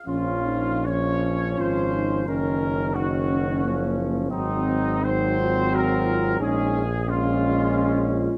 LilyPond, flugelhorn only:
\new Staff \with { instrumentName = "Flugelhorn" } { \time 3/4 \key bes \minor \tempo 4 = 88 des'4 des'2 | des'4 des'2 | c'4 c'2 | des'8 r8 des'2 | }